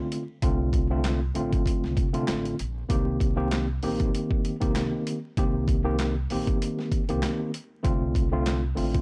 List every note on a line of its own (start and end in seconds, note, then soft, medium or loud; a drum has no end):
0.00 0.22 D3 loud
0.00 0.22 A3 medium
0.00 0.22 C4 medium
0.00 0.22 F4 loud
0.12 closed hi-hat medium
0.42 1.31 C2 loud
0.42 0.86 D3 loud
0.42 0.86 A3 medium
0.42 0.87 C4 medium
0.42 0.87 F4 loud
0.42 kick loud
0.42 closed hi-hat loud
0.73 kick loud
0.73 closed hi-hat medium
0.90 1.19 D3 medium
0.90 1.19 A3 medium
0.90 1.19 C4 medium
0.90 1.19 F4 loud
1.04 snare loud
1.04 clap medium
1.04 closed hi-hat medium
1.35 1.60 A1 loud
1.35 2.07 D3 loud
1.35 2.07 A3 medium
1.35 2.08 C4 loud
1.35 2.08 F4 loud
1.35 closed hi-hat medium
1.53 kick loud
1.53 closed hi-hat medium
1.66 kick medium
1.66 closed hi-hat loud
1.84 1.95 C2 loud
1.84 snare soft
1.97 2.22 C3 loud
1.97 kick medium
1.97 closed hi-hat medium
2.13 2.55 D3 loud
2.13 2.55 A3 medium
2.13 2.56 C4 medium
2.13 2.56 F4 loud
2.13 closed hi-hat medium
2.28 2.53 A1 loud
2.28 snare loud
2.28 clap medium
2.28 closed hi-hat medium
2.45 closed hi-hat medium
2.59 2.84 A#1 medium
2.59 closed hi-hat medium
2.89 3.79 C2 loud
2.89 3.33 D#3 medium
2.89 3.33 A#3 medium
2.89 3.34 C4 medium
2.89 3.34 G4 loud
2.89 kick loud
2.89 closed hi-hat loud
3.20 kick loud
3.20 closed hi-hat medium
3.36 3.65 D#3 medium
3.36 3.65 A#3 medium
3.36 3.66 C4 medium
3.36 3.66 G4 loud
3.51 snare loud
3.51 clap medium
3.51 closed hi-hat medium
3.83 4.08 A#1 loud
3.83 4.55 D#3 loud
3.83 4.55 A#3 medium
3.83 4.55 C4 medium
3.83 4.55 G4 loud
3.83 open hi-hat medium
4.00 kick loud
4.00 closed hi-hat medium
4.15 closed hi-hat loud
4.31 kick loud
4.45 closed hi-hat medium
4.60 4.86 C2 loud
4.60 5.17 D#3 medium
4.60 5.18 A#3 medium
4.60 5.18 C4 medium
4.60 5.18 G4 loud
4.60 kick loud
4.60 closed hi-hat medium
4.76 snare loud
4.76 clap loud
4.76 closed hi-hat medium
5.07 closed hi-hat medium
5.37 6.26 C2 loud
5.37 5.81 D#3 medium
5.37 5.82 A#3 medium
5.37 5.82 C4 medium
5.37 5.82 G4 loud
5.37 kick loud
5.37 closed hi-hat loud
5.68 kick loud
5.68 closed hi-hat medium
5.84 6.13 D#3 medium
5.84 6.13 A#3 medium
5.84 6.13 C4 medium
5.84 6.13 G4 loud
5.99 snare loud
5.99 clap medium
5.99 closed hi-hat medium
6.30 6.55 A#1 medium
6.30 7.03 D#3 loud
6.30 7.03 A#3 medium
6.30 7.03 C4 medium
6.30 7.03 G4 loud
6.30 open hi-hat medium
6.47 kick loud
6.47 closed hi-hat medium
6.62 closed hi-hat loud
6.79 snare soft
6.92 kick medium
6.92 closed hi-hat medium
7.09 7.20 C2 loud
7.09 7.50 D#3 medium
7.09 7.50 A#3 medium
7.09 7.51 C4 medium
7.09 7.51 G4 loud
7.09 closed hi-hat medium
7.23 snare loud
7.23 clap medium
7.23 closed hi-hat medium
7.54 closed hi-hat medium
7.83 8.74 C2 loud
7.83 8.28 D3 loud
7.83 8.28 A3 medium
7.83 8.28 C4 loud
7.83 8.28 F4 loud
7.83 kick loud
7.83 closed hi-hat loud
8.15 kick loud
8.15 closed hi-hat medium
8.32 8.60 D3 medium
8.32 8.61 A3 medium
8.32 8.61 C4 medium
8.32 8.61 F4 loud
8.46 snare loud
8.46 clap medium
8.46 closed hi-hat medium
8.76 9.02 A1 medium
8.76 9.02 D3 loud
8.76 9.02 A3 medium
8.76 9.02 C4 medium
8.76 9.02 F4 loud
8.76 open hi-hat medium
8.94 kick loud
8.94 closed hi-hat medium